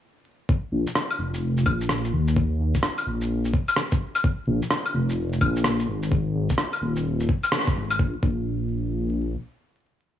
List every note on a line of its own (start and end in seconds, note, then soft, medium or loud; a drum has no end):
0.49 kick loud
0.72 0.86 A#1 medium
0.87 shaker medium
0.95 cross-stick loud
1.10 claves soft
1.10 shaker soft
1.19 1.65 F1 loud
1.34 shaker medium
1.57 shaker soft
1.66 2.12 A#1 loud
1.66 kick loud
1.66 claves medium
1.81 shaker medium
1.89 cross-stick medium
2.04 shaker soft
2.13 2.59 D#2 medium
2.28 shaker medium
2.36 kick loud
2.60 2.74 D#2 loud
2.74 kick medium
2.74 shaker medium
2.83 cross-stick loud
2.98 claves soft
2.98 shaker soft
3.07 3.52 A#1 loud
3.21 shaker medium
3.45 shaker soft
3.54 kick loud
3.68 claves medium
3.68 shaker medium
3.76 cross-stick loud
3.92 kick loud
3.92 shaker soft
4.15 claves medium
4.15 shaker medium
4.24 kick loud
4.47 4.61 A#1 loud
4.62 shaker medium
4.70 cross-stick loud
4.86 claves soft
4.86 shaker soft
4.94 5.40 F1 loud
5.09 shaker medium
5.33 shaker soft
5.41 5.87 A#1 loud
5.41 kick loud
5.41 claves medium
5.56 shaker medium
5.64 cross-stick loud
5.79 shaker soft
5.88 6.34 G#1 medium
6.03 shaker medium
6.12 kick loud
6.34 6.48 G#1 loud
6.49 kick medium
6.49 shaker medium
6.58 cross-stick loud
6.73 claves soft
6.73 shaker soft
6.81 7.27 D#1 loud
6.96 shaker medium
7.20 shaker soft
7.29 kick loud
7.43 claves medium
7.43 shaker medium
7.52 cross-stick loud
7.67 kick loud
7.67 shaker soft
7.76 7.98 G#1 medium
7.90 claves medium
7.90 shaker medium
7.99 8.15 A#1 loud
7.99 kick loud
8.23 9.36 A#1 loud
8.23 kick loud